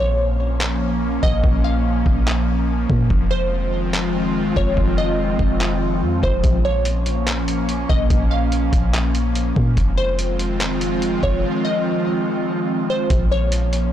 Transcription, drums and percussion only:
0.61 clap
1.23 kick
1.44 kick
2.06 kick
2.27 clap
2.90 kick
3.10 kick
3.94 clap
4.56 kick
4.77 kick
5.39 kick
5.61 clap
6.23 kick
6.44 kick, closed hi-hat
6.85 closed hi-hat
7.06 closed hi-hat
7.27 clap, closed hi-hat
7.48 closed hi-hat
7.69 closed hi-hat
7.90 kick
8.10 kick, closed hi-hat
8.52 closed hi-hat
8.73 kick, closed hi-hat
8.94 clap, closed hi-hat
9.15 closed hi-hat
9.35 closed hi-hat
9.56 kick
9.77 kick, closed hi-hat
10.19 closed hi-hat
10.39 closed hi-hat
10.61 clap, closed hi-hat
10.81 closed hi-hat
11.02 closed hi-hat
11.23 kick
13.10 kick, closed hi-hat
13.52 closed hi-hat
13.73 closed hi-hat

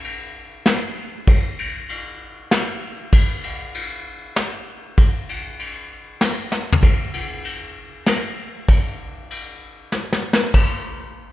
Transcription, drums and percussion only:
0.04 ride
0.66 snare, ride
1.27 kick, ride
1.59 ride
1.89 ride
2.51 snare, ride
3.12 kick, ride
3.43 ride
3.74 ride
4.36 snare, ride
4.98 kick, ride
5.29 ride
5.59 ride
6.21 snare, ride
6.52 snare
6.72 floor tom
6.83 kick, ride
7.13 ride
7.44 ride
8.06 snare, ride
8.69 kick, ride
9.30 ride
9.92 snare
10.13 snare
10.33 snare
10.54 kick, china

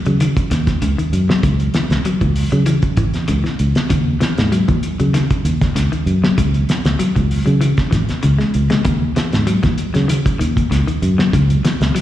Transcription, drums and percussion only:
0.05 closed hi-hat
0.20 closed hi-hat
0.37 kick, closed hi-hat
0.51 snare, closed hi-hat
0.67 kick, snare, closed hi-hat
0.82 closed hi-hat
0.99 closed hi-hat
1.13 closed hi-hat
1.30 snare
1.43 kick, closed hi-hat
1.60 closed hi-hat
1.74 snare, closed hi-hat
1.90 snare, closed hi-hat
2.05 closed hi-hat
2.21 kick, closed hi-hat
2.36 open hi-hat
2.52 closed hi-hat
2.66 closed hi-hat
2.82 kick, closed hi-hat
2.97 kick, closed hi-hat
3.14 snare, closed hi-hat
3.28 closed hi-hat
3.45 snare
3.59 closed hi-hat
3.75 snare, closed hi-hat
3.90 kick, closed hi-hat
4.21 snare, closed hi-hat
4.38 snare, closed hi-hat
4.52 closed hi-hat
4.68 kick, closed hi-hat
4.83 closed hi-hat
5.00 closed hi-hat
5.14 snare, closed hi-hat
5.30 kick, closed hi-hat
5.45 closed hi-hat
5.61 kick, snare, closed hi-hat
5.76 snare, closed hi-hat
5.93 closed hi-hat
6.07 closed hi-hat
6.24 snare
6.38 kick, closed hi-hat
6.54 closed hi-hat
6.69 snare, closed hi-hat
6.85 snare, closed hi-hat
6.99 closed hi-hat
7.16 kick, closed hi-hat
7.31 open hi-hat
7.47 closed hi-hat
7.61 closed hi-hat
7.77 kick, snare, closed hi-hat
7.92 kick, snare, closed hi-hat
8.09 snare, closed hi-hat
8.23 closed hi-hat
8.39 snare
8.54 closed hi-hat
8.70 snare, closed hi-hat
8.85 kick, closed hi-hat
9.16 snare, closed hi-hat
9.33 snare, closed hi-hat
9.47 closed hi-hat
9.63 kick, snare, closed hi-hat
9.78 closed hi-hat
9.94 snare, closed hi-hat
10.09 closed hi-hat
10.26 kick, closed hi-hat
10.41 closed hi-hat
10.57 kick, closed hi-hat
10.72 snare, closed hi-hat
10.88 closed hi-hat
11.03 closed hi-hat
11.19 snare
11.33 kick, closed hi-hat
11.50 closed hi-hat
11.65 snare, closed hi-hat
11.81 snare, closed hi-hat
11.96 closed hi-hat

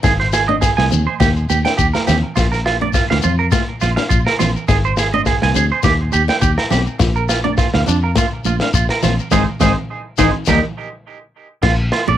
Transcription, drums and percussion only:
0.04 kick, snare, shekere
0.20 snare
0.33 snare, shekere
0.49 high conga
0.62 kick, snare, shekere
0.78 snare, high conga
0.92 high conga, low conga, shekere
1.20 kick, snare, shekere
1.36 shekere
1.50 high conga, shekere
1.66 snare, shekere
1.78 kick, shekere
1.94 snare, high conga, shekere
2.08 snare, low conga, shekere
2.37 kick, snare, shekere
2.52 snare, shekere
2.66 snare
2.82 high conga
2.93 kick, snare, shekere
3.11 snare, high conga
3.22 low conga, shekere
3.52 kick, snare, shekere
3.81 snare, high conga, shekere
3.97 snare, shekere
4.10 kick, shekere
4.27 snare
4.40 snare, low conga, shekere
4.56 shekere
4.69 kick, snare, shekere
4.85 shekere
4.97 snare, shekere
5.14 high conga
5.26 kick, snare, shekere
5.42 snare, high conga
5.55 low conga, shekere
5.83 kick, snare, shekere
6.12 high conga, shekere
6.29 snare, shekere
6.42 kick, shekere
6.58 snare
6.71 snare, low conga, shekere
6.86 shekere
7.00 kick, snare, shekere
7.16 shekere
7.29 snare, shekere
7.45 high conga
7.58 kick, snare, shekere
7.74 snare, high conga
7.87 low conga, shekere
8.15 kick, snare, shekere
8.45 high conga, shekere
8.60 snare, shekere
8.74 kick, shekere
8.89 snare
9.02 snare, low conga, shekere
9.19 shekere
9.31 kick, snare, low conga, shekere
9.60 kick, snare, low conga, shekere
10.18 kick, snare, low conga, shekere
10.46 kick, snare, low conga, shekere
11.63 kick, snare, crash
11.92 snare
12.08 high conga

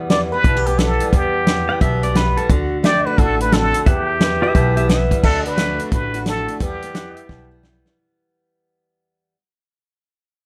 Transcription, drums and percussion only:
0.10 snare, closed hi-hat
0.44 kick, closed hi-hat
0.66 closed hi-hat
0.79 snare, closed hi-hat
1.00 closed hi-hat
1.13 kick, closed hi-hat
1.47 snare, closed hi-hat
1.81 kick, closed hi-hat
2.03 closed hi-hat
2.15 snare, closed hi-hat
2.37 closed hi-hat
2.49 kick, closed hi-hat
2.84 snare, closed hi-hat
3.18 kick, closed hi-hat
3.40 closed hi-hat
3.52 snare, closed hi-hat
3.74 closed hi-hat
3.86 kick, closed hi-hat
4.21 snare, closed hi-hat
4.55 kick, closed hi-hat
4.77 closed hi-hat
4.89 snare, closed hi-hat
5.11 kick, closed hi-hat
5.23 kick, crash
5.45 closed hi-hat
5.58 snare, closed hi-hat
5.79 closed hi-hat
5.92 kick, closed hi-hat
6.14 closed hi-hat
6.26 snare, closed hi-hat
6.48 closed hi-hat
6.60 kick, closed hi-hat
6.82 closed hi-hat
6.95 snare, closed hi-hat
7.17 closed hi-hat
7.29 kick, snare
7.63 snare
7.86 snare

